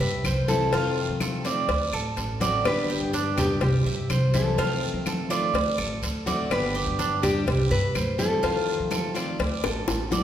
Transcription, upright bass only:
0, 0, Header, 1, 2, 480
1, 0, Start_track
1, 0, Key_signature, 1, "major"
1, 0, Tempo, 481928
1, 722, Time_signature, 4, 2, 24, 8
1, 10192, End_track
2, 0, Start_track
2, 0, Title_t, "Upright bass"
2, 0, Program_c, 0, 32
2, 0, Note_on_c, 0, 43, 96
2, 228, Note_off_c, 0, 43, 0
2, 242, Note_on_c, 0, 36, 89
2, 698, Note_off_c, 0, 36, 0
2, 721, Note_on_c, 0, 41, 97
2, 1063, Note_off_c, 0, 41, 0
2, 1081, Note_on_c, 0, 53, 83
2, 1651, Note_off_c, 0, 53, 0
2, 1676, Note_on_c, 0, 38, 96
2, 1907, Note_off_c, 0, 38, 0
2, 1919, Note_on_c, 0, 33, 92
2, 2148, Note_off_c, 0, 33, 0
2, 2154, Note_on_c, 0, 33, 93
2, 2614, Note_off_c, 0, 33, 0
2, 2633, Note_on_c, 0, 31, 88
2, 2979, Note_off_c, 0, 31, 0
2, 2995, Note_on_c, 0, 43, 89
2, 3569, Note_off_c, 0, 43, 0
2, 3592, Note_on_c, 0, 36, 102
2, 3825, Note_off_c, 0, 36, 0
2, 3834, Note_on_c, 0, 43, 89
2, 4066, Note_off_c, 0, 43, 0
2, 4079, Note_on_c, 0, 36, 93
2, 4537, Note_off_c, 0, 36, 0
2, 4556, Note_on_c, 0, 41, 90
2, 4901, Note_off_c, 0, 41, 0
2, 4916, Note_on_c, 0, 53, 90
2, 5489, Note_off_c, 0, 53, 0
2, 5512, Note_on_c, 0, 38, 107
2, 5745, Note_off_c, 0, 38, 0
2, 5758, Note_on_c, 0, 33, 87
2, 5988, Note_off_c, 0, 33, 0
2, 5995, Note_on_c, 0, 38, 87
2, 6455, Note_off_c, 0, 38, 0
2, 6477, Note_on_c, 0, 31, 100
2, 6822, Note_off_c, 0, 31, 0
2, 6841, Note_on_c, 0, 43, 86
2, 7412, Note_off_c, 0, 43, 0
2, 7439, Note_on_c, 0, 36, 96
2, 7668, Note_off_c, 0, 36, 0
2, 7678, Note_on_c, 0, 43, 94
2, 7908, Note_off_c, 0, 43, 0
2, 7914, Note_on_c, 0, 38, 88
2, 8374, Note_off_c, 0, 38, 0
2, 8399, Note_on_c, 0, 41, 97
2, 8742, Note_off_c, 0, 41, 0
2, 8762, Note_on_c, 0, 53, 90
2, 9331, Note_off_c, 0, 53, 0
2, 9356, Note_on_c, 0, 38, 108
2, 9586, Note_off_c, 0, 38, 0
2, 9599, Note_on_c, 0, 33, 88
2, 9828, Note_off_c, 0, 33, 0
2, 9843, Note_on_c, 0, 33, 92
2, 10192, Note_off_c, 0, 33, 0
2, 10192, End_track
0, 0, End_of_file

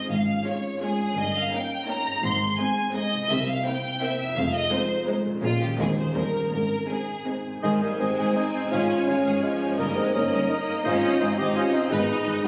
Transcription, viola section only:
0, 0, Header, 1, 2, 480
1, 0, Start_track
1, 0, Key_signature, -4, "major"
1, 0, Tempo, 355872
1, 132, Time_signature, 3, 2, 24, 8
1, 7331, Tempo, 365631
1, 11171, Tempo, 355240
1, 16735, End_track
2, 0, Start_track
2, 0, Title_t, "Viola section"
2, 0, Program_c, 0, 48
2, 608, Note_on_c, 0, 56, 55
2, 614, Note_on_c, 0, 61, 48
2, 971, Note_off_c, 0, 56, 0
2, 974, Note_off_c, 0, 61, 0
2, 1099, Note_on_c, 0, 56, 54
2, 1102, Note_on_c, 0, 61, 50
2, 1457, Note_off_c, 0, 56, 0
2, 1459, Note_off_c, 0, 61, 0
2, 2059, Note_on_c, 0, 61, 52
2, 2067, Note_on_c, 0, 58, 54
2, 2415, Note_off_c, 0, 61, 0
2, 2419, Note_off_c, 0, 58, 0
2, 2533, Note_on_c, 0, 61, 60
2, 2535, Note_on_c, 0, 58, 55
2, 2891, Note_off_c, 0, 61, 0
2, 2892, Note_off_c, 0, 58, 0
2, 3496, Note_on_c, 0, 60, 60
2, 3498, Note_on_c, 0, 56, 54
2, 3851, Note_off_c, 0, 60, 0
2, 3852, Note_off_c, 0, 56, 0
2, 3969, Note_on_c, 0, 60, 66
2, 3973, Note_on_c, 0, 56, 61
2, 4329, Note_off_c, 0, 60, 0
2, 4331, Note_off_c, 0, 56, 0
2, 4922, Note_on_c, 0, 58, 65
2, 4926, Note_on_c, 0, 60, 67
2, 5282, Note_off_c, 0, 58, 0
2, 5284, Note_off_c, 0, 60, 0
2, 5418, Note_on_c, 0, 60, 73
2, 5422, Note_on_c, 0, 58, 70
2, 5771, Note_off_c, 0, 60, 0
2, 5773, Note_off_c, 0, 58, 0
2, 6364, Note_on_c, 0, 56, 73
2, 6366, Note_on_c, 0, 60, 72
2, 6723, Note_off_c, 0, 56, 0
2, 6724, Note_off_c, 0, 60, 0
2, 6843, Note_on_c, 0, 60, 67
2, 6847, Note_on_c, 0, 56, 73
2, 7204, Note_off_c, 0, 60, 0
2, 7205, Note_off_c, 0, 56, 0
2, 7327, Note_on_c, 0, 58, 65
2, 7332, Note_on_c, 0, 56, 62
2, 7678, Note_off_c, 0, 58, 0
2, 7680, Note_off_c, 0, 56, 0
2, 7797, Note_on_c, 0, 60, 58
2, 7798, Note_on_c, 0, 56, 64
2, 8153, Note_off_c, 0, 56, 0
2, 8153, Note_off_c, 0, 60, 0
2, 8266, Note_on_c, 0, 55, 59
2, 8266, Note_on_c, 0, 61, 55
2, 8632, Note_off_c, 0, 55, 0
2, 8632, Note_off_c, 0, 61, 0
2, 9242, Note_on_c, 0, 60, 47
2, 9243, Note_on_c, 0, 56, 50
2, 9605, Note_off_c, 0, 60, 0
2, 9606, Note_off_c, 0, 56, 0
2, 9727, Note_on_c, 0, 60, 50
2, 9728, Note_on_c, 0, 56, 49
2, 10091, Note_off_c, 0, 56, 0
2, 10091, Note_off_c, 0, 60, 0
2, 10213, Note_on_c, 0, 51, 63
2, 10437, Note_off_c, 0, 51, 0
2, 10457, Note_on_c, 0, 55, 61
2, 10695, Note_off_c, 0, 55, 0
2, 10704, Note_on_c, 0, 56, 61
2, 11165, Note_off_c, 0, 56, 0
2, 11179, Note_on_c, 0, 60, 65
2, 11655, Note_on_c, 0, 61, 60
2, 11657, Note_off_c, 0, 60, 0
2, 12128, Note_off_c, 0, 61, 0
2, 12129, Note_on_c, 0, 56, 64
2, 12607, Note_off_c, 0, 56, 0
2, 12622, Note_on_c, 0, 53, 65
2, 13090, Note_on_c, 0, 55, 69
2, 13100, Note_off_c, 0, 53, 0
2, 13326, Note_on_c, 0, 56, 76
2, 13335, Note_off_c, 0, 55, 0
2, 13574, Note_off_c, 0, 56, 0
2, 13581, Note_on_c, 0, 58, 75
2, 14046, Note_off_c, 0, 58, 0
2, 14062, Note_on_c, 0, 58, 78
2, 14531, Note_off_c, 0, 58, 0
2, 14535, Note_on_c, 0, 61, 79
2, 15006, Note_off_c, 0, 61, 0
2, 15020, Note_on_c, 0, 60, 80
2, 15258, Note_off_c, 0, 60, 0
2, 15259, Note_on_c, 0, 63, 80
2, 15492, Note_off_c, 0, 63, 0
2, 15497, Note_on_c, 0, 61, 77
2, 15735, Note_off_c, 0, 61, 0
2, 15744, Note_on_c, 0, 60, 80
2, 15975, Note_on_c, 0, 63, 90
2, 15977, Note_off_c, 0, 60, 0
2, 16678, Note_off_c, 0, 63, 0
2, 16735, End_track
0, 0, End_of_file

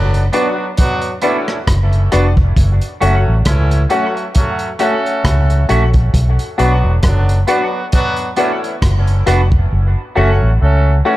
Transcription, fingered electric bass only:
0, 0, Header, 1, 2, 480
1, 0, Start_track
1, 0, Key_signature, 2, "minor"
1, 0, Tempo, 892857
1, 1380, Time_signature, 4, 2, 24, 8
1, 6004, End_track
2, 0, Start_track
2, 0, Title_t, "Fingered electric bass"
2, 0, Program_c, 0, 33
2, 0, Note_on_c, 0, 30, 98
2, 151, Note_off_c, 0, 30, 0
2, 904, Note_on_c, 0, 30, 92
2, 1112, Note_off_c, 0, 30, 0
2, 1149, Note_on_c, 0, 29, 90
2, 1354, Note_off_c, 0, 29, 0
2, 1382, Note_on_c, 0, 30, 105
2, 1499, Note_off_c, 0, 30, 0
2, 1627, Note_on_c, 0, 30, 84
2, 1741, Note_off_c, 0, 30, 0
2, 1763, Note_on_c, 0, 33, 77
2, 1851, Note_off_c, 0, 33, 0
2, 1863, Note_on_c, 0, 37, 100
2, 2071, Note_off_c, 0, 37, 0
2, 2824, Note_on_c, 0, 37, 90
2, 3032, Note_off_c, 0, 37, 0
2, 3066, Note_on_c, 0, 34, 89
2, 3273, Note_off_c, 0, 34, 0
2, 3303, Note_on_c, 0, 35, 104
2, 3420, Note_off_c, 0, 35, 0
2, 3547, Note_on_c, 0, 35, 79
2, 3662, Note_off_c, 0, 35, 0
2, 3679, Note_on_c, 0, 28, 80
2, 3770, Note_off_c, 0, 28, 0
2, 3784, Note_on_c, 0, 30, 99
2, 3993, Note_off_c, 0, 30, 0
2, 4746, Note_on_c, 0, 30, 82
2, 4954, Note_off_c, 0, 30, 0
2, 4987, Note_on_c, 0, 29, 90
2, 5195, Note_off_c, 0, 29, 0
2, 5228, Note_on_c, 0, 30, 101
2, 5343, Note_off_c, 0, 30, 0
2, 5469, Note_on_c, 0, 30, 81
2, 5584, Note_off_c, 0, 30, 0
2, 5605, Note_on_c, 0, 33, 84
2, 5694, Note_off_c, 0, 33, 0
2, 5709, Note_on_c, 0, 37, 89
2, 5917, Note_off_c, 0, 37, 0
2, 6004, End_track
0, 0, End_of_file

